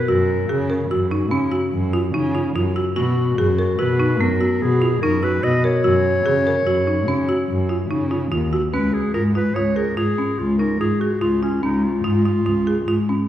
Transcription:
Already playing: clarinet B4
0.08 cello F#2, marimba F#4, clarinet A#4
0.49 cello C#3, marimba G#4
0.70 marimba A#4
0.90 cello F#2, marimba F#4
1.11 marimba D#4
1.31 cello C#3, marimba C#4
1.51 marimba F#4
1.73 cello F#2
1.93 marimba F4
2.14 cello C#3, marimba D#4
2.35 marimba F4
2.56 cello F#2, marimba F4
2.76 marimba F#4
2.96 cello B2, clarinet F#4, marimba F#4
3.38 cello F#2, clarinet F#4, marimba G#4
3.59 marimba A#4
3.79 cello B2, marimba F#4, clarinet B4
4.00 marimba D#4
4.21 cello F#2, marimba B3, clarinet A#4
4.40 marimba F#4
4.61 cello B2, clarinet G#4
4.82 marimba F4
5.02 cello F#2, marimba D#4, clarinet A#4
5.23 marimba F#4, clarinet B4
5.43 cello B2, marimba F#4, clarinet D#5
5.64 marimba A#4, clarinet C#5
5.84 cello F#2, marimba F#4
6.25 cello C#3, marimba G#4
6.47 marimba A#4
6.66 cello F#2, marimba F#4
6.87 marimba D#4
7.08 cello C#3, marimba C#4
7.29 marimba F#4
7.49 cello F#2
7.69 marimba F4
7.90 cello C#3, marimba D#4
8.11 marimba F4
8.32 cello D#2, marimba F4
8.53 marimba F#4
8.73 cello C#2, marimba C#4, clarinet B4
8.93 clarinet G#4
9.14 cello G#2, marimba F4, clarinet A#4
9.35 marimba F4, clarinet B4
9.55 cello C#2, marimba F4, clarinet C#5
9.76 marimba G#4, clarinet A#4
9.97 cello G#2, marimba F4, clarinet G#4
10.18 marimba C#4
10.39 cello C#2, clarinet F4
10.58 marimba D#4, clarinet A#4
10.80 cello G#2, marimba F4, clarinet G#4
11.00 clarinet F#4, marimba G#4
11.21 cello C#2, clarinet F4, marimba F4
11.42 clarinet C#4, marimba F4
11.63 cello C#2, marimba C#4, clarinet D#4
11.84 clarinet F4
12.04 cello G#2, marimba F4
12.25 marimba F4
12.46 cello C#2, marimba F4
12.67 marimba G#4
12.87 cello G#2, marimba F4
13.09 marimba C#4

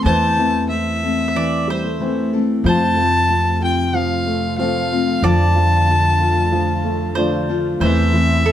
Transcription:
Already playing: upright piano A3 C4, mandolin A4
0.04 upright bass E2, steel-string acoustic guitar E2 E3 A3 C4 E4 A4, upright piano E3, mandolin C5, fiddle A5
0.38 upright piano E3, steel-string acoustic guitar A3 C4 E4 A4
0.70 steel-string acoustic guitar A3 C4 E4 A4, fiddle E5
1.03 steel-string acoustic guitar A3 C4 E4 A4
1.28 mandolin E5
1.36 upright piano E3, mandolin D5
1.68 upright piano G3, mandolin C5
1.84 upright piano A3
2.00 upright piano E3 A3 C4, steel-string acoustic guitar A3 C4 E4 A4
2.33 steel-string acoustic guitar A3 C4 E4 A4
2.64 upright bass F2, string section C3 F3 A3 F4, upright piano F3, steel-string acoustic guitar F3 A3 C4 F4 A4, mandolin C5
2.68 fiddle A5
2.97 upright piano F3, steel-string acoustic guitar C4 F4 A4
3.28 steel-string acoustic guitar A3 C4 F4 A4
3.60 steel-string acoustic guitar C4 F4 A4, fiddle G5
3.94 upright piano F3, fiddle F5
4.26 upright piano A3
4.58 upright piano F3 A3 C4, steel-string acoustic guitar A3 C4 F4 A4, fiddle F5
4.91 steel-string acoustic guitar C4 F4 A4
5.22 upright bass F2, steel-string acoustic guitar D3 F3 D4 F4 A4, string section D3, upright piano F3, mandolin D5, fiddle A5
5.55 upright piano F3, steel-string acoustic guitar D4 F4 A4
5.89 steel-string acoustic guitar D3 D4 F4 A4
6.21 steel-string acoustic guitar D4 F4 A4
6.52 upright piano F3
6.85 upright piano A3
7.15 steel-string acoustic guitar D3 D4 F4 A4, upright piano F3 A3 D4, mandolin C5
7.49 steel-string acoustic guitar D4 F4 A4
7.80 upright bass E2, steel-string acoustic guitar E2 E3 A3 C4 E4 A4, string section C3 E3 E4, upright piano E3, mandolin C5, fiddle E5
8.13 upright piano E3, steel-string acoustic guitar A3 C4 E4 A4
8.45 steel-string acoustic guitar A3 C4 E4 A4, mandolin A4

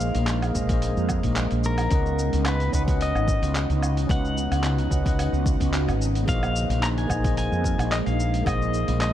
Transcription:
Already playing: fretless electric bass A#1, ambient pad G#3 A#3 D#4, tine electric piano A#3 G#4 C5 D#5, pedal steel guitar F5
0.00 shaker
0.15 fretless electric bass A#1, open hi-hat, shaker
0.27 clap, open hi-hat, shaker
0.42 open hi-hat, low woodblock, shaker
0.53 fretless electric bass A#1, tine electric piano A#3 G#4 C5 D#5, kick, shaker
0.68 tine electric piano A#3 G#4 C5, kick, open hi-hat, shaker
0.73 tine electric piano D#5
0.82 open hi-hat, shaker
0.97 fretless electric bass F2, shaker
1.09 kick, low woodblock, shaker
1.23 fretless electric bass A#1, kick, open hi-hat, shaker
1.36 clap, open hi-hat, shaker
1.51 fretless electric bass A#1, open hi-hat, shaker
1.64 pedal steel guitar A#4, shaker
1.78 open hi-hat, low woodblock, shaker
1.89 fretless electric bass C#2, ambient pad C#3 B3 F#4, tine electric piano B3 C#4, kick, open hi-hat, shaker
1.93 tine electric piano D#5 F#5
2.06 shaker
2.19 shaker
2.33 fretless electric bass C#2, open hi-hat, shaker
2.46 pedal steel guitar B4, clap, open hi-hat, low woodblock, shaker
2.60 open hi-hat, shaker
2.72 fretless electric bass C#2, tine electric piano C#4 B4 D#5 F#5, pedal steel guitar B4, kick, shaker
2.85 tine electric piano C#4 B4, kick, open hi-hat, shaker
2.89 tine electric piano D#5 F#5
3.01 pedal steel guitar D#5, open hi-hat, shaker
3.15 fretless electric bass G#1, low woodblock, shaker
3.28 kick, shaker
3.42 fretless electric bass C#2, open hi-hat, shaker
3.55 clap, open hi-hat, shaker
3.70 fretless electric bass C#2, open hi-hat, shaker
3.83 low woodblock, shaker
3.97 open hi-hat, shaker
4.07 fretless electric bass C#2, tine electric piano C#4 B4, kick, open hi-hat, shaker
4.11 tine electric piano D#5 F#5, pedal steel guitar F#5
4.25 shaker
4.37 shaker
4.51 fretless electric bass C#2, open hi-hat, low woodblock, shaker
4.64 clap, open hi-hat, shaker
4.78 open hi-hat, shaker
4.90 fretless electric bass C#2, tine electric piano C#4 B4 D#5 F#5, kick, shaker
5.03 tine electric piano C#4 B4 D#5, kick, open hi-hat
5.07 tine electric piano F#5, shaker
5.19 open hi-hat, low woodblock, shaker
5.33 fretless electric bass C#2, shaker
5.46 kick, shaker
5.60 fretless electric bass C#2, kick, open hi-hat, shaker
5.74 clap, open hi-hat, shaker
5.87 fretless electric bass G#1, open hi-hat, low woodblock, shaker
6.02 shaker
6.15 open hi-hat, shaker
6.24 ambient pad G#3 A#3, tine electric piano A#3 G#4
6.28 fretless electric bass A#1, tine electric piano C5 D#5, pedal steel guitar F5, kick, open hi-hat, shaker
6.43 low woodblock, shaker
6.56 shaker
6.69 fretless electric bass A#1, open hi-hat, shaker
6.83 pedal steel guitar A#5, clap, open hi-hat, shaker
6.98 pedal steel guitar G#5, open hi-hat, shaker
7.07 fretless electric bass A#1, tine electric piano A#3 G#4 C5 D#5, kick, low woodblock, shaker
7.21 tine electric piano A#3 G#4 C5, kick, open hi-hat
7.25 tine electric piano D#5, shaker
7.37 pedal steel guitar G#5, open hi-hat, shaker
7.52 fretless electric bass F2, shaker
7.64 kick, shaker
7.78 fretless electric bass A#1, open hi-hat, low woodblock, shaker
7.92 pedal steel guitar D#5, clap, open hi-hat, shaker
8.06 fretless electric bass A#1, pedal steel guitar F5, open hi-hat, shaker
8.20 shaker
8.34 open hi-hat, shaker
8.43 fretless electric bass A#1, tine electric piano A#3 G#4, kick, open hi-hat, low woodblock
8.47 tine electric piano C5 D#5, pedal steel guitar D#5, shaker
8.62 shaker
8.74 shaker
8.88 fretless electric bass A#1, open hi-hat, shaker
9.01 pedal steel guitar D#5, clap, open hi-hat, shaker

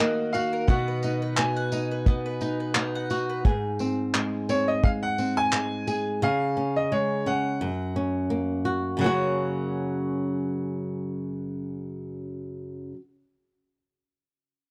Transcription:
Already playing: nylon-string guitar D#3 D#4 F#4, mandolin A#3 A#4 F#5, upright piano D#5
0.00 nylon-string guitar A#3, mandolin F#4
0.33 mandolin F#4, nylon-string guitar F#4, upright piano F5, tambourine
0.53 mandolin A#4
0.67 nylon-string guitar B2 F#4, mandolin B3, upright piano F#5, kick
0.88 mandolin B4
1.03 mandolin D#4, nylon-string guitar D#4, tambourine
1.22 mandolin B4
1.36 nylon-string guitar B3, mandolin D#4, upright piano G#5, clap
1.57 mandolin F#5
1.72 nylon-string guitar D#4, mandolin D#4, tambourine
1.91 mandolin B4
2.06 mandolin B3, nylon-string guitar B3, kick
2.26 mandolin B4
2.41 nylon-string guitar D#4, mandolin D#4, tambourine
2.60 mandolin B4
2.75 nylon-string guitar B3, mandolin D#4, clap
2.95 mandolin F#5
3.10 mandolin D#4, nylon-string guitar F#4, tambourine
3.29 mandolin B4
3.45 nylon-string guitar G#2 G#4, kick
3.79 nylon-string guitar C4, tambourine
4.14 nylon-string guitar G#3, clap
4.49 nylon-string guitar C4, upright piano C#5, tambourine
4.68 upright piano D#5
4.83 nylon-string guitar G#3, upright piano F5, kick
5.03 upright piano F#5
5.18 nylon-string guitar C4, tambourine
5.37 upright piano G#5
5.52 nylon-string guitar G#3, clap
5.87 nylon-string guitar G#4, tambourine
6.22 nylon-string guitar C#3 G#4, upright piano F5
6.57 nylon-string guitar C#4
6.76 upright piano D#5
6.92 nylon-string guitar G#3, upright piano C#5
7.26 nylon-string guitar C#4, upright piano F#5
7.61 nylon-string guitar F#2
7.96 nylon-string guitar C#4
8.30 nylon-string guitar A#3
8.65 nylon-string guitar F#4
8.97 nylon-string guitar F#2 C#3 F#3
9.01 nylon-string guitar A#3 C#4, upright piano F#5
9.06 nylon-string guitar F#4

